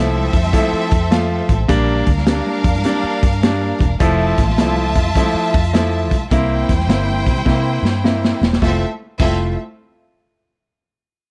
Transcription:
0.00 0.28 C2 medium
0.00 0.34 F3 medium
0.00 0.34 A3 medium
0.00 1.65 C4 medium
0.00 0.35 E4 loud
0.00 1.65 A4 medium
0.00 1.65 E5 loud
0.16 muted conga soft
0.16 high conga medium
0.33 0.51 F2 loud
0.33 kick medium
0.33 closed hi-hat medium
0.33 low conga medium
0.44 closed hi-hat medium
0.44 high conga medium
0.44 low conga medium
0.52 0.91 F3 medium
0.52 0.92 A3 medium
0.52 0.92 E4 loud
0.52 kick medium
0.52 closed hi-hat loud
0.52 high conga medium
0.73 muted fingered electric bass stroke soft
0.91 1.40 F2 medium
0.91 kick medium
0.91 closed hi-hat medium
1.11 1.49 F3 medium
1.11 1.49 A3 medium
1.11 1.50 F4 loud
1.11 snare loud
1.11 closed hi-hat medium
1.11 high conga soft
1.49 1.66 A1 medium
1.49 kick medium
1.49 closed hi-hat medium
1.49 high conga medium
1.68 2.01 A#1 loud
1.68 2.07 G3 loud
1.68 2.07 A#3 loud
1.68 2.08 D4 loud
1.68 3.97 D4 medium
1.68 3.97 A#4 medium
1.68 3.97 F5 medium
1.68 kick loud
1.68 closed hi-hat loud
1.68 muted conga soft
1.68 low conga medium
2.06 2.40 D2 medium
2.06 kick medium
2.06 closed hi-hat medium
2.17 snare soft
2.17 high conga medium
2.27 2.65 G3 medium
2.27 2.65 A#3 medium
2.27 2.66 D4 medium
2.27 snare loud
2.27 closed hi-hat medium
2.46 muted conga soft
2.46 high conga medium
2.64 2.73 F2 medium
2.64 kick medium
2.64 closed hi-hat medium
2.64 low conga medium
2.75 2.83 G2 loud
2.75 closed hi-hat soft
2.75 high conga medium
2.75 low conga medium
2.84 3.23 G3 medium
2.84 3.23 A#3 medium
2.84 3.23 D4 loud
2.84 closed hi-hat medium
2.84 muted conga soft
2.84 high conga medium
3.04 muted fingered electric bass stroke soft
3.04 muted conga soft
3.23 3.72 G2 medium
3.23 kick loud
3.23 closed hi-hat medium
3.33 closed hi-hat soft
3.41 3.81 G3 medium
3.41 3.81 A#3 medium
3.41 3.82 D4 medium
3.41 snare loud
3.41 closed hi-hat medium
3.41 muted conga soft
3.41 high conga soft
3.61 muted conga soft
3.79 3.97 E1 medium
3.79 kick medium
3.79 closed hi-hat medium
3.79 high conga medium
3.99 4.32 F1 loud
3.99 4.38 F3 loud
3.99 4.38 A3 loud
3.99 4.39 E4 loud
3.99 6.28 F4 medium
3.99 6.28 E5 medium
3.99 6.28 A5 medium
3.99 kick loud
3.99 closed hi-hat loud
3.99 low conga medium
4.38 4.58 A1 medium
4.38 kick medium
4.38 snare soft
4.38 closed hi-hat medium
4.48 snare soft
4.48 high conga medium
4.58 4.96 C2 loud
4.58 4.97 F3 medium
4.58 4.97 A3 medium
4.58 4.98 E4 loud
4.58 snare loud
4.58 closed hi-hat medium
4.77 high conga medium
4.95 5.13 F2 medium
4.95 kick medium
4.95 closed hi-hat medium
4.95 low conga medium
5.07 high conga medium
5.07 low conga medium
5.15 5.54 F3 medium
5.15 5.54 A3 medium
5.15 5.55 E4 loud
5.15 kick medium
5.15 closed hi-hat loud
5.15 muted conga soft
5.15 high conga medium
5.34 muted fingered electric bass stroke soft
5.34 muted conga soft
5.54 6.12 F2 medium
5.54 kick medium
5.54 closed hi-hat medium
5.64 closed hi-hat medium
5.73 6.12 F3 medium
5.73 6.12 A3 medium
5.73 6.12 E4 loud
5.73 snare loud
5.73 closed hi-hat medium
5.73 high conga medium
5.92 muted conga soft
6.10 6.29 B1 medium
6.10 kick medium
6.10 closed hi-hat medium
6.10 high conga medium
6.31 6.63 C2 loud
6.31 6.70 A#3 loud
6.31 6.70 C4 medium
6.31 8.59 E4 medium
6.31 6.70 E4 loud
6.31 8.59 C5 medium
6.31 8.59 G5 loud
6.31 kick loud
6.31 closed hi-hat loud
6.31 muted conga soft
6.31 low conga medium
6.49 muted conga soft
6.69 6.86 E2 medium
6.69 kick medium
6.69 snare soft
6.69 closed hi-hat medium
6.79 snare soft
6.79 high conga medium
6.87 7.28 G1 loud
6.87 7.27 A#3 medium
6.87 7.28 C4 medium
6.87 7.28 E4 medium
6.87 snare loud
6.87 closed hi-hat medium
6.87 muted conga soft
7.08 high conga medium
7.26 7.44 C3 medium
7.26 kick medium
7.26 closed hi-hat medium
7.26 low conga medium
7.36 closed hi-hat soft
7.36 high conga medium
7.36 low conga medium
7.45 7.78 C3 medium
7.45 7.84 A#3 medium
7.45 7.85 C4 medium
7.45 7.85 E4 medium
7.45 kick medium
7.45 snare medium
7.45 muted conga soft
7.45 high conga medium
7.65 muted conga soft
7.83 8.32 G2 medium
7.83 snare medium
8.04 8.43 A#3 medium
8.04 8.43 C4 medium
8.04 8.43 E4 medium
8.04 snare medium
8.04 high conga soft
8.23 snare medium
8.23 muted conga soft
8.41 8.59 E1 medium
8.41 snare loud
8.41 high conga medium
8.53 snare medium
8.61 8.83 F1 medium
8.61 8.83 A3 medium
8.61 8.84 C4 medium
8.61 8.83 E4 medium
8.61 8.83 F4 medium
8.61 8.84 A4 medium
8.61 8.83 E5 loud
8.61 kick medium
8.61 snare medium
8.61 high conga medium
9.19 9.55 F1 loud
9.19 9.55 A3 medium
9.19 9.55 C4 medium
9.19 9.55 E4 medium
9.19 9.55 F4 medium
9.19 9.55 A4 medium
9.19 9.55 E5 loud
9.19 kick loud
9.19 crash medium
9.19 high conga medium

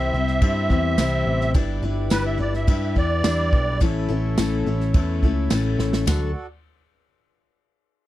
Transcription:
0.00 0.12 C2 medium
0.00 0.14 C3 medium
0.00 0.14 E3 medium
0.00 0.14 G3 medium
0.00 0.14 C4 medium
0.00 0.14 E4 medium
0.00 1.52 E4 medium
0.00 1.52 G4 medium
0.00 0.13 C5 loud
0.00 1.53 C5 medium
0.00 1.51 E5 loud
0.00 1.52 E5 medium
0.13 0.40 C2 medium
0.13 0.41 G3 soft
0.13 0.41 C4 soft
0.13 0.42 E4 soft
0.13 0.42 C5 medium
0.27 snare soft
0.41 0.69 G2 loud
0.41 0.70 G3 medium
0.41 0.70 C4 medium
0.41 0.70 E4 medium
0.41 0.69 C5 medium
0.41 kick loud
0.41 crash medium
0.70 0.97 E2 loud
0.70 0.98 G3 soft
0.70 0.98 C4 medium
0.70 0.98 E4 medium
0.70 0.98 C5 medium
0.70 kick medium
0.98 1.25 C2 loud
0.98 1.55 C3 loud
0.98 1.58 E3 medium
0.98 1.53 G3 loud
0.98 1.54 C4 loud
0.98 1.55 E4 loud
0.98 1.55 C5 loud
0.98 snare loud
0.98 tambourine medium
0.98 crash medium
1.26 1.53 A1 loud
1.41 snare soft
1.53 1.82 G1 loud
1.53 1.83 G3 medium
1.53 1.83 D4 medium
1.53 3.78 E4 medium
1.53 1.83 E4 loud
1.53 3.78 G4 medium
1.53 3.78 B4 medium
1.53 1.81 B4 loud
1.53 3.78 D5 medium
1.53 kick loud
1.53 crash medium
1.82 2.10 G1 medium
1.82 2.10 D4 medium
1.82 2.11 E4 medium
1.82 2.11 B4 medium
2.10 2.38 G1 medium
2.10 2.39 G3 medium
2.10 2.39 D4 medium
2.10 2.38 E4 loud
2.10 2.24 B4 loud
2.10 2.36 B4 loud
2.10 snare loud
2.10 tambourine medium
2.10 crash medium
2.26 2.39 E5 loud
2.38 2.66 G1 medium
2.38 2.67 D4 soft
2.38 2.67 E4 medium
2.38 2.67 B4 medium
2.38 2.53 D5 loud
2.54 2.96 E5 medium
2.54 snare soft
2.67 2.95 G2 medium
2.67 2.96 G3 medium
2.67 2.96 D4 medium
2.67 2.96 E4 medium
2.67 2.95 B4 medium
2.67 kick loud
2.67 crash medium
2.96 3.23 E2 medium
2.96 3.24 D4 soft
2.96 3.25 E4 soft
2.96 3.24 B4 medium
2.96 3.79 D5 loud
2.96 kick medium
3.24 3.51 E2 medium
3.24 3.81 G3 medium
3.24 3.81 D4 medium
3.24 3.81 E4 medium
3.24 3.82 B4 medium
3.24 snare loud
3.24 tambourine medium
3.24 crash medium
3.52 3.81 B1 loud
3.52 kick loud
3.80 4.08 A1 medium
3.80 4.09 A2 medium
3.80 4.09 E3 medium
3.80 4.09 A3 medium
3.80 4.09 C#4 medium
3.80 6.04 E4 medium
3.80 4.09 E4 loud
3.80 6.05 A4 medium
3.80 4.07 A4 loud
3.80 6.04 C#5 medium
3.80 6.04 E5 medium
3.80 kick loud
3.80 crash medium
4.08 4.36 A1 medium
4.08 4.38 A3 soft
4.08 4.38 C#4 medium
4.08 4.38 E4 medium
4.08 4.37 A4 medium
4.38 4.65 A1 loud
4.38 4.66 A2 medium
4.38 4.66 E3 loud
4.38 4.66 A3 medium
4.38 4.67 C#4 loud
4.38 4.66 E4 medium
4.38 4.65 A4 loud
4.38 snare loud
4.38 tambourine loud
4.38 crash medium
4.66 4.93 A1 loud
4.66 4.93 A3 soft
4.66 4.94 C#4 medium
4.66 4.94 E4 medium
4.66 4.94 A4 medium
4.81 snare soft
4.94 5.21 E2 medium
4.94 5.22 A3 medium
4.94 5.23 C#4 medium
4.94 5.23 E4 medium
4.94 5.22 A4 medium
4.94 kick loud
4.94 crash medium
5.22 5.50 C#2 medium
5.22 5.51 A3 medium
5.22 5.51 C#4 medium
5.22 5.51 E4 medium
5.22 5.51 A4 medium
5.22 kick medium
5.50 5.78 A1 medium
5.50 6.08 A2 medium
5.50 6.05 E3 medium
5.50 6.06 A3 medium
5.50 6.07 C#4 loud
5.50 6.08 E4 loud
5.50 6.08 A4 medium
5.50 snare loud
5.50 tambourine loud
5.50 crash medium
5.79 6.06 A1 loud
5.79 snare medium
5.93 snare loud
6.06 6.33 D2 loud
6.06 6.29 D3 medium
6.06 6.30 F#3 medium
6.06 6.30 A3 medium
6.06 6.47 F#4 medium
6.06 6.31 F#4 medium
6.06 6.46 A4 medium
6.06 6.31 A4 medium
6.06 6.47 D5 medium
6.06 6.46 F#5 medium
6.06 snare medium
6.06 floor tom medium
6.06 ride bell medium
6.06 tambourine medium

